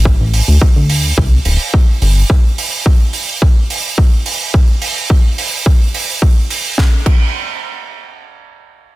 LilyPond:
<<
  \new Staff \with { instrumentName = "Analog synth bass" } { \clef bass \time 4/4 \key c \mixolydian \tempo 4 = 107 a,,16 a,,8 d,16 r16 d,8. c,8 d,,16 r8. g,,8 | r1 | r1 | r1 | }
  \new DrumStaff \with { instrumentName = "Drums" } \drummode { \time 4/4 bd8 hho8 bd8 hho8 bd8 hho8 bd8 hho8 | bd8 hho8 bd8 hho8 bd8 hho8 bd8 hho8 | bd8 hho8 bd8 hho8 bd8 hho8 bd8 hho8 | <bd sn>8 <cymc bd>8 r4 r4 r4 | }
>>